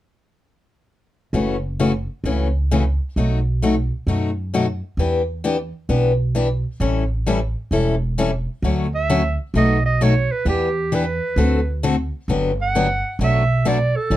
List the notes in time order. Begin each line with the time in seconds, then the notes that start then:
1.33 F#1 C#3 E3 A3 C#4 F#4
1.79 C#3 E3 A3 C#4 F#4
2.24 C#2 C#3 E3 A3 C#4 F#4
2.71 C#3 E3 A3 C#4 F#4
3.16 B1 B2 F#3 A3 D#4 F#4
3.62 B2 F#3 A3 D#4 F#4
4.07 F#2 B2 F#3 A3 D#4 F#4
4.54 B2 F#3 A3 D#4 F#4
4.97 E2 E3 B3 D4 G4
5.44 E3 B3 D4 G4
5.89 B1 E3 B3 D4 G4
6.35 E3 B3 D4 G4
6.80 A1 E3 G3 C#4 E4 A4
7.26 E3 G3 C#4 E4 A4
7.71 E1 E3 G3 C#4 E4 A4
8.18 E3 G3 C#4 E4 A4
8.62 D2 D3 F#3 A3 C#4 F#4
8.95 E5
9.09 D3 F#3 A3 C#4 F#4
9.54 B1 B2 F#3 A3 D#4 F#4 D#5
9.86 D#5
10.01 B2 F#3 A3 D#4 F#4 C#5
10.32 B4
10.45 E2 E3 B3 D4 G4
10.92 E3 B3 D4 G4 B4
11.36 D2 D3 A3 C4 F#4 A4
11.83 D3 A3 C4 F#4 A4
12.28 G1 D3 F#3 B3 D4 G4
12.62 F#5
12.75 D3 F#3 B3 D4 G4
13.19 B1 B2 F#3 A3 D4 F#4
13.24 E5
13.65 B2 F#3 A3 D4 F#4 D5
13.96 A4
14.10 A1 E3 G3 C#4 E4 A4